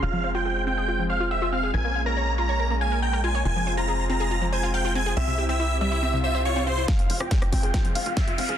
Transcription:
Already playing: F4
0.02 F1 G#3 C4 F4 F5
0.13 F3
0.24 C5
0.35 F4 G5
0.45 G#4
0.67 C4 G5
0.78 G#4
0.88 F4
0.99 F3
1.10 C5 F5
1.20 F4
1.31 E5 F5
1.42 F4
1.52 C4 F5
1.63 G#4
1.74 A#1 A#3 C#4 A#4 G#5
1.85 A#3
1.95 F5
2.06 A#4 A#5
2.17 C#5
2.38 F4 A#5
2.49 C#5
2.60 A#4
2.70 A#3
2.81 F5 G#5
2.92 A#4
3.02 G5 A#5
3.13 A#4
3.24 F4 G#5
3.35 C#5
3.45 F1 C4 F4 G#5
3.56 F3
3.67 C5
3.77 F4 A#5
3.88 G#4
4.09 C4 A#5
4.20 G#4
4.31 F4
4.42 F3
4.52 C5 G#5
4.63 F4
4.74 F5 G5
4.85 F4
4.95 C4 G#5
5.06 G#4
5.17 C2 C3 C4 E4 G4 E5
5.28 C3
5.38 G4
5.49 C4 E5
5.60 E4
5.81 G3 E5
5.92 E4
6.03 C4, swell
6.13 C3
6.24 C5 E5
6.35 C5
6.45 C4 C#5
6.56 C4
6.67 C4 C5
6.78 E4
6.88 G#3 C4 F4 F5, kick, snare, closed hi-hat, riser
6.99 F1 F3, closed hi-hat
7.10 F1 C5, open hi-hat
7.20 F2 F4 G5, cross-stick, closed hi-hat
7.31 G#4, kick, snare, closed hi-hat
7.42 F1, cross-stick, closed hi-hat
7.52 F1 C4 G5, kick, open hi-hat
7.63 F1 G#4, closed hi-hat
7.74 F4, kick, snare, closed hi-hat
7.84 F1 F3, closed hi-hat
7.95 F1 C5 F5, open hi-hat
8.06 F1 F4, closed hi-hat
8.17 E5 F5, kick, snare, closed hi-hat
8.27 F1 F4, closed hi-hat
8.38 F1 C4 F5, open hi-hat
8.49 F1 G#4, closed hi-hat

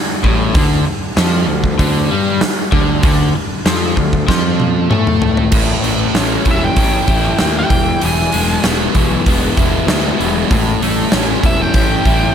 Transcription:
0.24 A1 A2, kick
0.54 D2 D3, kick, open hi-hat
0.87 muted picked electric bass stroke, muted distorted electric guitar stroke, muted overdriven electric guitar stroke
1.17 F2 F3, snare, open hi-hat
1.48 D2 D3
1.64 kick
1.79 D2 D3, kick, open hi-hat
2.10 G2 G3
2.41 muted overdriven electric guitar stroke, muted distorted electric guitar stroke, muted picked electric bass stroke, snare, open hi-hat
2.72 D2 D3, kick
3.03 D2 D3, kick, open hi-hat
3.35 muted distorted electric guitar stroke, muted picked electric bass stroke, muted overdriven electric guitar stroke
3.65 F2 F3, snare, open hi-hat
3.97 D2 D3, kick
4.13 kick
4.28 F2 F3, kick, snare
4.60 high tom
4.90 A2 A3, mid tom
5.07 mid tom
5.22 floor tom
5.37 floor tom
5.52 A1 A2, kick, crash
5.82 A1 A3, open hi-hat
6.14 A1 C#4, snare, open hi-hat
6.45 E1 E3, kick, open hi-hat
6.51 E5
6.64 G5
6.76 A1 A3 C#4, kick, open hi-hat
7.08 A1 E3 E4, kick, open hi-hat
7.39 D#2 A3, snare, open hi-hat
7.59 G5
7.70 E1 E2 E3, kick, open hi-hat
8.00 E1 E2 E3, open hi-hat
8.06 G#5
8.32 E1 G#3, open hi-hat
8.64 E1 B3, snare, open hi-hat
8.94 B1 E3, kick, open hi-hat
9.26 E1 G#3 B3, kick, open hi-hat
9.57 E1 E3 E4, kick, open hi-hat
9.87 D2 G#3, snare, open hi-hat
10.19 E1 E3 B3, open hi-hat
10.51 A1 A2, kick, open hi-hat
10.82 A1 A3, open hi-hat
11.12 A1 C#4, snare, open hi-hat
11.44 E1 E3 E5, kick, open hi-hat
11.62 G5
11.74 A1 A3 C#4, kick, open hi-hat
12.05 A1 E3 E4, kick, open hi-hat

